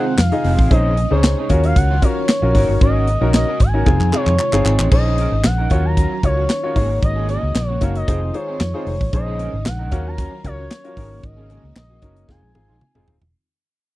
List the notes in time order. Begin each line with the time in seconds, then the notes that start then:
Already playing: C3 D#3 G#3 C4 D#4 F4 G#4 C5 F#5
0.06 muted clean electric guitar stroke
0.18 F2 F5, muted clean electric guitar stroke, snare, clap, closed hi-hat
0.32 D#4 F4 G#4 D#5, muted clean electric guitar stroke, closed hi-hat
0.44 F1 C4 D#4 G#4, open hi-hat
0.58 A1 C4 D#4 G#4, kick
0.71 A#1 C#3 C#4 D#4 G#4 C5 D#5, kick, closed hi-hat
0.97 muted clean electric guitar stroke, closed hi-hat
1.11 C#2 C#4 D#4 G#4 C5 C#5
1.23 muted clean electric guitar stroke, snare, clap, closed hi-hat
1.38 C#4 D#4 G#4
1.49 D#2 D#3 F#3 C#4 F4 F#4 A#4 F5, muted clean electric guitar stroke, kick, closed hi-hat
1.64 F5, muted clean electric guitar stroke, closed hi-hat
1.76 C#2 F#5, muted clean electric guitar stroke, kick, closed hi-hat
1.90 F#3 C#4 F4
2.02 C#4 F4 F#4 A#4 C#5, muted clean electric guitar stroke, kick, closed hi-hat
2.17 muted clean electric guitar stroke
2.28 snare, clap, closed hi-hat
2.42 A#1 C#4 F4 F#4 A#4, muted clean electric guitar stroke
2.54 G#1 C#3 G#3 A#3 C#4 D#4 F#4 A#4, kick, open hi-hat
2.69 G1, muted clean electric guitar stroke
2.81 G#1 C#4 F#4 A#4 D#5, kick, closed hi-hat
3.08 muted clean electric guitar stroke, closed hi-hat
3.21 A#1 C#4 D#4 F#4 A#4
3.34 D#5, muted clean electric guitar stroke, snare, clap, closed hi-hat
3.47 C#4 F#4 A#4
3.60 G#1 G#5, muted clean electric guitar stroke, kick, closed hi-hat
3.74 C#4 D#4 F#4 A#4, muted clean electric guitar stroke
3.86 F1 C3 C4 D#4 F4 G#4, kick, clap
4.00 F2, muted clean electric guitar stroke, clap
4.12 C4 D#4 F4 G#4 C#5, clap
4.26 F2, muted clean electric guitar stroke, clap
4.39 muted clean electric guitar stroke, clap
4.53 G1 C4 D#4 F4 G#4, muted clean electric guitar stroke, clap
4.65 G#1 C4 D#4 G#4, clap
4.79 A1 C4 D#4 G#4, clap
4.91 A#1 C#3 G#3 C#4 D#4 G#4 C5 D#5, muted clean electric guitar stroke, kick, crash
5.05 C#4 D#4 G#4
5.18 C#4 D#4 A#4, closed hi-hat
5.32 G#1, muted clean electric guitar stroke
5.44 A#1 F#5, muted clean electric guitar stroke, snare, clap, closed hi-hat
5.58 C#4 D#4 A#4
5.70 D#2 D#3 F#3 C#4 F4 F#4 A#4 C#5 F5, kick, closed hi-hat
5.85 A#5, muted clean electric guitar stroke
5.97 F#3 C#4 F#4, kick, closed hi-hat
6.11 muted clean electric guitar stroke
6.23 C#2 F4 F#4 A#4 C#5, muted clean electric guitar stroke, kick, closed hi-hat
6.37 F#3 C#4 F#4
6.49 muted clean electric guitar stroke, snare, clap, closed hi-hat
6.63 F#3 C#4 F4 F#4 A#4 C#5
6.75 G#1 C#3 G#3 A#3 C#4 D#4 F#4 G#4 A#4 C#5, kick, open hi-hat
6.89 muted clean electric guitar stroke
7.02 G#1 D#5, muted clean electric guitar stroke, kick, closed hi-hat
7.16 A#3 C#4 G#4
7.28 A#3 C#4 G#4 D#5, closed hi-hat
7.42 C#2, muted clean electric guitar stroke
7.55 A#1, muted clean electric guitar stroke, snare, clap, closed hi-hat
7.68 A#3 C#4 F#4 C#5
7.81 F#1 A#3 C#4 D#4 F#4 A#4 C#5 F5, kick, closed hi-hat
7.95 D#5, muted clean electric guitar stroke, closed hi-hat
8.07 F1 C4 D#4 F4 G#4 C5, kick, closed hi-hat
8.21 muted clean electric guitar stroke
8.34 D#4 F4 G#4 C5 C#5, muted clean electric guitar stroke, closed hi-hat
8.48 C4 D#4 G#4
8.60 F2, muted clean electric guitar stroke, snare, clap, closed hi-hat
8.74 C4 D#4 F4 G#4 C5
8.86 F1, muted clean electric guitar stroke, open hi-hat
9.00 A1, muted clean electric guitar stroke, kick
9.13 A#1 C#4 D#4 G#4 C5 D#5, muted clean electric guitar stroke, kick, closed hi-hat
9.26 C#4 D#4 G#4
9.39 C#4 D#4 A#4, closed hi-hat
9.53 G#1, muted clean electric guitar stroke
9.66 A#1 F#5, muted clean electric guitar stroke, snare, clap, closed hi-hat
9.79 C#4 D#4 A#4
9.91 D#2 D#3 F#3 C#4 F4 F#4 A#4 F5, kick, closed hi-hat
10.05 A#5, muted clean electric guitar stroke
10.17 F#3 C#4 F#4, kick, closed hi-hat
10.32 muted clean electric guitar stroke
10.44 C#2 C#4 F4 F#4 A#4 C#5, muted clean electric guitar stroke, kick, closed hi-hat
10.58 F#3 C#4 F#4
10.71 muted clean electric guitar stroke, snare, clap, closed hi-hat
10.84 F#3 C#4 F4 F#4 A#4, closed hi-hat
10.97 G#1 C#3 G#3 A#3 C#4 D#4 F#4 G#4 A#4, kick, open hi-hat
11.11 muted clean electric guitar stroke
11.23 G#1 D#5, muted clean electric guitar stroke, kick, closed hi-hat
11.37 A#3 C#4 G#4
11.49 A#3 C#4 G#4, closed hi-hat
11.63 C#2, muted clean electric guitar stroke
11.76 A#1 D#5, muted clean electric guitar stroke, snare, clap, closed hi-hat
11.90 A#3 C#4 F#4
12.02 F#1 A#3 C#4 D#4 F#4 A#4, kick, closed hi-hat
12.16 muted clean electric guitar stroke, closed hi-hat
12.28 F1 D#3 G#3 C4 D#4 F4 G#4 G#5, kick, snare
12.42 A#1, muted clean electric guitar stroke
12.54 G#1 C4 D#4 F4 G#4, muted clean electric guitar stroke, high tom
12.68 A#1 G#3 D#4 F4
12.81 muted clean electric guitar stroke, mid tom
12.95 F1 G#3 C4 D#4 F4 G#4, mid tom
13.07 D#1, muted clean electric guitar stroke, floor tom
13.21 E1, muted clean electric guitar stroke, floor tom